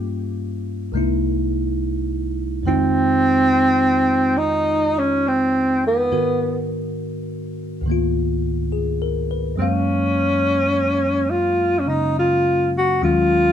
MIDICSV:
0, 0, Header, 1, 3, 480
1, 0, Start_track
1, 0, Tempo, 860832
1, 1488, Time_signature, 4, 2, 24, 8
1, 7540, End_track
2, 0, Start_track
2, 0, Title_t, "Tenor saxophone"
2, 0, Program_c, 0, 66
2, 1490, Note_on_c, 0, 60, 91
2, 2441, Note_on_c, 0, 63, 86
2, 2449, Note_off_c, 0, 60, 0
2, 2781, Note_on_c, 0, 61, 80
2, 2789, Note_off_c, 0, 63, 0
2, 2944, Note_on_c, 0, 60, 77
2, 2952, Note_off_c, 0, 61, 0
2, 3261, Note_off_c, 0, 60, 0
2, 3274, Note_on_c, 0, 59, 71
2, 3721, Note_off_c, 0, 59, 0
2, 5347, Note_on_c, 0, 61, 77
2, 6302, Note_on_c, 0, 65, 68
2, 6311, Note_off_c, 0, 61, 0
2, 6574, Note_on_c, 0, 61, 50
2, 6582, Note_off_c, 0, 65, 0
2, 6626, Note_on_c, 0, 63, 72
2, 6634, Note_off_c, 0, 61, 0
2, 6775, Note_off_c, 0, 63, 0
2, 6797, Note_on_c, 0, 65, 69
2, 7090, Note_off_c, 0, 65, 0
2, 7125, Note_on_c, 0, 66, 76
2, 7255, Note_off_c, 0, 66, 0
2, 7272, Note_on_c, 0, 65, 88
2, 7540, Note_off_c, 0, 65, 0
2, 7540, End_track
3, 0, Start_track
3, 0, Title_t, "Tine electric piano"
3, 0, Program_c, 1, 4
3, 0, Control_c, 1, 64, 127
3, 0, Note_on_c, 1, 43, 43
3, 0, Note_on_c, 1, 55, 38
3, 0, Note_on_c, 1, 58, 36
3, 0, Note_on_c, 1, 61, 41
3, 0, Note_on_c, 1, 65, 47
3, 513, Note_on_c, 1, 36, 44
3, 521, Note_on_c, 1, 48, 36
3, 523, Note_off_c, 1, 58, 0
3, 523, Note_on_c, 1, 56, 40
3, 525, Note_off_c, 1, 43, 0
3, 527, Note_off_c, 1, 55, 0
3, 528, Note_off_c, 1, 61, 0
3, 529, Note_on_c, 1, 58, 39
3, 531, Note_off_c, 1, 65, 0
3, 534, Note_on_c, 1, 63, 37
3, 538, Control_c, 1, 64, 0
3, 543, Note_on_c, 1, 64, 49
3, 649, Control_c, 1, 64, 127
3, 1468, Note_on_c, 1, 41, 48
3, 1479, Note_off_c, 1, 36, 0
3, 1479, Note_off_c, 1, 56, 0
3, 1480, Note_on_c, 1, 51, 42
3, 1483, Note_off_c, 1, 48, 0
3, 1486, Note_off_c, 1, 63, 0
3, 1486, Note_on_c, 1, 56, 45
3, 1487, Note_off_c, 1, 58, 0
3, 1493, Note_on_c, 1, 63, 44
3, 1494, Note_off_c, 1, 64, 0
3, 1495, Control_c, 1, 64, 0
3, 1495, Note_on_c, 1, 65, 50
3, 1581, Control_c, 1, 64, 127
3, 3395, Note_off_c, 1, 41, 0
3, 3401, Note_off_c, 1, 51, 0
3, 3404, Note_off_c, 1, 56, 0
3, 3407, Note_off_c, 1, 63, 0
3, 3409, Note_off_c, 1, 65, 0
3, 3410, Note_on_c, 1, 44, 40
3, 3412, Note_on_c, 1, 51, 39
3, 3412, Note_on_c, 1, 70, 38
3, 3413, Control_c, 1, 64, 0
3, 3414, Note_on_c, 1, 59, 34
3, 3418, Note_on_c, 1, 66, 42
3, 3516, Control_c, 1, 64, 127
3, 4357, Note_on_c, 1, 37, 45
3, 4361, Note_off_c, 1, 44, 0
3, 4368, Note_on_c, 1, 44, 35
3, 4370, Note_off_c, 1, 51, 0
3, 4370, Note_off_c, 1, 70, 0
3, 4371, Note_off_c, 1, 59, 0
3, 4372, Control_c, 1, 64, 0
3, 4373, Note_off_c, 1, 66, 0
3, 4381, Note_on_c, 1, 51, 40
3, 4391, Note_on_c, 1, 58, 36
3, 4403, Note_on_c, 1, 59, 37
3, 4413, Note_on_c, 1, 65, 41
3, 4460, Control_c, 1, 64, 127
3, 4864, Note_on_c, 1, 68, 35
3, 5029, Note_on_c, 1, 70, 38
3, 5161, Note_off_c, 1, 68, 0
3, 5191, Note_on_c, 1, 71, 35
3, 5270, Note_off_c, 1, 70, 0
3, 5324, Note_off_c, 1, 37, 0
3, 5329, Note_on_c, 1, 42, 46
3, 5330, Note_off_c, 1, 44, 0
3, 5335, Control_c, 1, 64, 0
3, 5336, Note_off_c, 1, 51, 0
3, 5339, Note_on_c, 1, 54, 38
3, 5341, Note_off_c, 1, 58, 0
3, 5345, Note_on_c, 1, 56, 44
3, 5347, Note_off_c, 1, 59, 0
3, 5352, Note_off_c, 1, 65, 0
3, 5355, Note_on_c, 1, 58, 39
3, 5363, Note_on_c, 1, 77, 48
3, 5431, Note_off_c, 1, 71, 0
3, 5442, Control_c, 1, 64, 127
3, 6616, Note_on_c, 1, 49, 32
3, 6633, Note_on_c, 1, 61, 40
3, 7251, Note_off_c, 1, 49, 0
3, 7252, Note_off_c, 1, 42, 0
3, 7254, Note_off_c, 1, 56, 0
3, 7254, Note_off_c, 1, 61, 0
3, 7255, Note_off_c, 1, 54, 0
3, 7257, Note_on_c, 1, 39, 47
3, 7259, Control_c, 1, 64, 0
3, 7261, Note_on_c, 1, 56, 44
3, 7261, Note_on_c, 1, 61, 44
3, 7262, Note_on_c, 1, 54, 41
3, 7263, Note_on_c, 1, 51, 43
3, 7265, Note_off_c, 1, 58, 0
3, 7268, Note_on_c, 1, 65, 52
3, 7269, Note_off_c, 1, 77, 0
3, 7362, Control_c, 1, 64, 127
3, 7540, Note_off_c, 1, 39, 0
3, 7540, Note_off_c, 1, 51, 0
3, 7540, Note_off_c, 1, 54, 0
3, 7540, Note_off_c, 1, 56, 0
3, 7540, Note_off_c, 1, 61, 0
3, 7540, Note_off_c, 1, 65, 0
3, 7540, End_track
0, 0, End_of_file